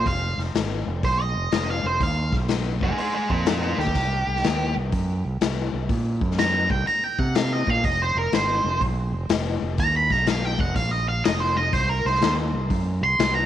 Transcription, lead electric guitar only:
0.07 F5
1.05 C5
1.22 D#5
1.70 F5
1.86 C5
2.03 F5
2.83 D#4 C5
2.99 D#4 C5
3.14 D#4 C5
3.31 F4 A#4
3.48 F4 A#4
3.62 F4 A#4
3.79 G4
6.39 A#5
6.71 G5
6.87 A#5
7.04 G5
7.19 F#5
7.35 F5
7.53 D#5
7.70 F5
7.85 D#5
8.02 C5
8.18 A#4
8.34 C5
9.80 A#5
9.96 B5
10.12 A#5
10.27 F5
10.45 G5
10.61 F#5
10.76 F5
10.91 D#5
11.09 F5
11.24 D#5
11.40 C5
11.57 D#5
11.73 C5
11.89 A#4
12.06 C5
13.04 C6
13.35 A#5

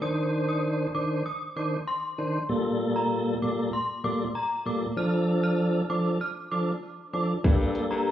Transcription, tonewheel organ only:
0.01 D#3 D4 C5
0.94 D#3 D4 C5
1.56 D#3 D4 C5
2.18 D#3 D4 C5
2.49 A#2 G3 A#3 A4
3.42 A#2 G3 A#3 A4
4.04 A#2 G3 A#3 A4
4.66 A#2 G3 A#3 A4
4.96 F3 D4 A4
5.90 F3 D4 A4
6.52 F3 D4 A4
7.13 F3 D4 A4
7.44 G3 A#3 A4

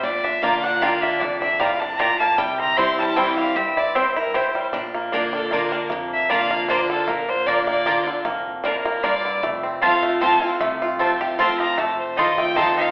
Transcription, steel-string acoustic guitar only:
0.03 A#2
0.42 D3 A#3 D4 F4
0.81 D3 A#3 D4 F4
1.21 F2
1.60 A2
1.99 A#2
2.38 C3
2.77 E3 G3 C4 E4
3.16 E3 G3 C4 E4
3.56 G2
3.96 G2
4.35 A2
4.74 A#2
5.13 D3 A#3 D4 F4
5.53 D3 A#3 D4 F4
5.92 F2
6.30 D3 A#3 D4 F4
6.69 D3 A#3 D4 F4
7.09 A#2
7.47 D3 A#3 D4 F4
7.86 D3 A#3 D4 F4
8.07 D4 F4
8.25 F2
8.65 A2
9.04 G2
9.43 F2
9.82 F3 A3 C4 F4
10.21 F3 A3 C4 F4
10.43 C4 F4
10.61 C3
10.99 F3 A3 C4 F4
11.39 F3 A3 C4 F4
11.79 F2
12.17 D#3 A3 C4 F4
12.56 D#3 A3 C4 F4

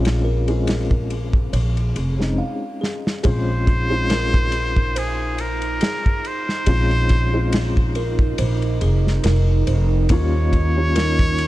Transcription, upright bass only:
Already playing: A#1
1.53 A#1
1.96 F1
3.25 A#1
6.67 A#1
8.39 A#1
8.82 F1
9.24 F1
9.67 F1
10.10 D#2

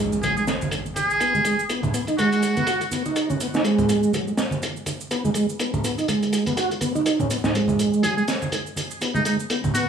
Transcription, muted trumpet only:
0.23 G#4
0.37 G#4
0.96 G#4
2.18 F#4
8.03 G#4
8.17 G#4
9.15 D#4
9.26 D#4
9.75 F#4

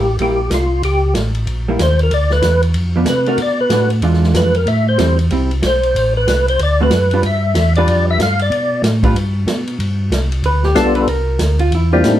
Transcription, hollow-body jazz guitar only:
0.20 G3 A#3 E4
1.68 G3 A#3 E4
2.96 F3 B3 D4
3.27 A3 D4 F#4
3.71 A3 D4 F#4
4.03 E3 G#3 D4 F4
4.98 G3 C4 E4
5.31 G3 C4 E4
6.81 D3 A3 C4 F#4
7.13 G3 D4 F4 B4
7.78 G3 D4 F4 B4
9.04 G3 D4 F4 B4
10.46 B4
10.65 G4
10.78 A4
10.96 B4
11.09 A#4
11.60 F4
11.75 E4
11.93 F4
12.07 D#4

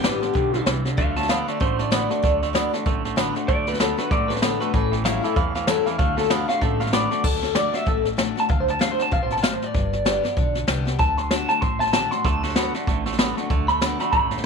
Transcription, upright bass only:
0.04 A1
0.35 B1
0.66 C2
0.98 D2
1.61 A1
2.23 D2
2.86 A1
3.48 D2
4.11 A1
4.74 A1
5.36 E2
5.99 D2
6.61 A1
7.24 D2
7.87 A1
8.49 D2
9.12 A1
9.74 G1
10.37 B1
10.68 C2
10.99 D2
11.62 A1
12.25 D2
12.87 A1
13.50 D2
14.13 A1

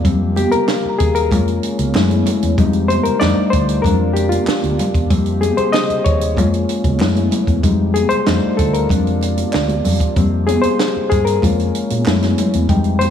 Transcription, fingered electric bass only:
0.05 F2
0.53 muted fingered electric bass stroke
0.85 muted fingered electric bass stroke
1.01 D#2
1.32 F2
1.79 C#2
1.95 F#2
2.43 E2
2.58 F2
3.06 muted fingered electric bass stroke
3.22 F2
3.38 muted fingered electric bass stroke
3.54 D2
3.85 F2
4.48 muted fingered electric bass stroke
4.64 D2
4.95 E2
5.11 F2
5.58 muted fingered electric bass stroke
5.90 muted fingered electric bass stroke
6.06 D#2
6.38 F2
6.85 C#2
7.00 F#2
7.48 E2
7.64 F2
8.12 muted fingered electric bass stroke
8.28 F2
8.44 muted fingered electric bass stroke
8.60 D2
8.91 F2
9.55 D2
9.86 F2
10.17 F2
10.65 muted fingered electric bass stroke
10.96 muted fingered electric bass stroke
11.12 G2
11.43 F2
11.91 A#2
12.06 F#2
12.54 E2
12.69 F2

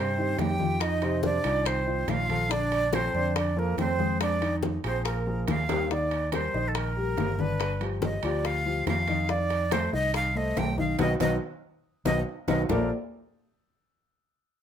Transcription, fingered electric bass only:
Already playing: G2
0.38 F2
1.45 C2
2.08 A#1
3.14 F2
3.77 F2
4.84 A#1
5.48 D#2
6.54 A#1
7.17 G1
8.23 D2
8.87 F2
9.93 C2
10.57 B1
10.99 B1
11.21 B1
12.06 B1
12.49 B1
12.70 A#1

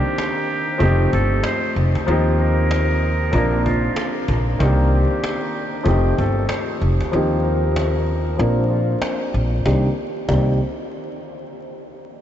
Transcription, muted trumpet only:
Already playing: G4
1.13 A4
1.46 C5
2.40 A#4
3.65 F4
4.92 G4
6.18 A4
6.49 C5
7.43 A#4
8.70 F4
9.66 D#4
10.29 D#4

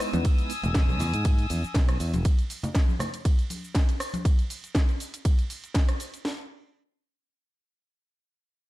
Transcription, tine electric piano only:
Already playing: G#3 B3 D#4 E4 B4
0.13 G#3 B3 D#4 E4 B4

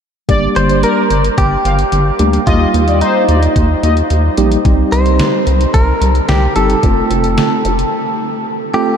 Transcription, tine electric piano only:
0.29 G3 A#3 D4 G4
2.20 G3 A#3 D4 G4
2.47 G3 A#3 D#4 G4
4.38 G3 A#3 D#4 G4
4.65 G3 C4 D#4 G4
6.56 G3 C4 D#4 G4
6.83 A3 C4 F4 A4
8.74 A3 C4 F4 A4

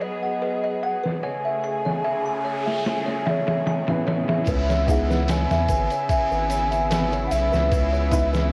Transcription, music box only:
0.02 D#5
0.23 F#5
0.42 B4
0.64 D#5
0.83 F#5
1.04 B4
1.23 C#5
1.45 E5
1.64 G#5
1.85 C#5
2.04 E5
2.26 G#5
2.45 C#5
2.66 E5
2.85 G#5
3.06 C#5
3.26 E5
3.48 E5
3.67 G#5
3.88 C#5
4.07 C#5
4.29 E5
4.48 B4
4.69 C#5
4.89 E5
5.10 B4
5.30 C#5
5.51 E5
5.70 B4
5.92 C#5
6.10 E5
6.31 B4
6.50 C#5
6.71 E5
6.90 B4
7.12 C#5
7.31 E5
7.52 B4
7.72 B4
7.93 C#5
8.12 E5
8.33 B4

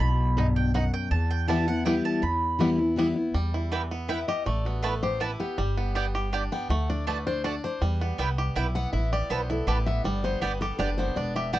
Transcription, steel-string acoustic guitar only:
0.00 B2
0.37 G2
0.74 F#2
1.12 E2
1.48 E3 G3 B3 E4
1.67 B3 E4
1.85 E3 G3 B3 E4
2.22 E2
2.59 E3 G3 B3 E4
2.78 B3 E4
2.96 E3 G3 B3 E4
3.16 B3 E4
4.09 E5
4.28 D#5
4.46 D5
4.65 F#4
4.82 A4
5.03 C5
5.21 B4
5.40 G4
6.52 G5
6.70 F#5
6.90 D5
7.07 B4
7.27 C5
7.44 D5
7.64 C5
7.82 B4
8.75 F#5
8.93 E5
9.13 D5
9.30 C5
9.51 A4
9.68 B4
9.86 E5
10.04 D5
10.24 C5
10.42 B4
10.61 A4
10.79 B4
10.98 C5
11.16 D5
11.36 E5
11.53 F#5

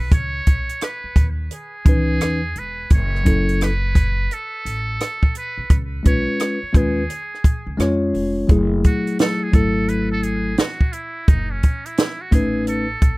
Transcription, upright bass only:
0.00 B1
0.12 C#2
0.47 B1
1.04 muted upright bass stroke
1.16 D#2
1.86 C#2
2.20 E2
2.56 E1
2.90 F#1
4.65 A1
5.58 B1
5.70 C#2
6.06 B1
6.63 muted upright bass stroke
6.75 D#2
7.67 C#2
7.79 F2
8.14 F1
8.49 F#1
9.53 G#1
11.28 F#1
12.32 A1
13.02 B1

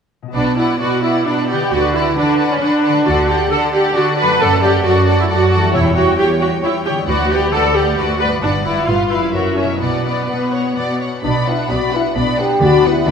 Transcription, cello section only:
0.35 B2
0.80 B2
1.26 B2
1.71 D3
2.17 D3
2.62 D3
3.06 D3
3.50 D3
3.95 D3
4.41 F#2
4.85 F#2
5.30 F#2
5.74 E2
6.17 E2
6.63 E2
7.07 D2
7.52 D2
7.97 D2
8.42 G2
8.88 G2
9.35 F#2
9.82 B2
10.29 B2
10.76 B2
11.25 B2
11.70 B2
12.16 B2
12.61 D3
13.06 D3

